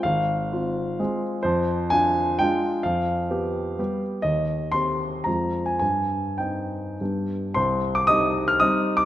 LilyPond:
\new Staff \with { instrumentName = "Grand piano" } { \time 3/4 \key f \dorian \tempo 4 = 123 << { f''2~ f''8 r8 | \key c \minor c''4 aes''4 g''4 | f''2~ f''8 r8 | ees''4 c'''4 bes''8. aes''16 |
aes''4 g''4. r8 | <c'' c'''>8. d'''16 <ees'' ees'''>8. f'''16 <ees'' ees'''>8. d'''16 | } \\ { aes,,4 <c' f'>4 <aes c' f'>4 | f,4 <d' f'>4 <aes d' f'>4 | f,4 <b g'>4 <g b g'>4 | ees,4 <c' g'>4 <f, aes c' f'>4 |
g,4 <c' ees'>4 <g, g b d'>4 | c,4 <g c' ees'>4 <g c' ees'>4 | } >> }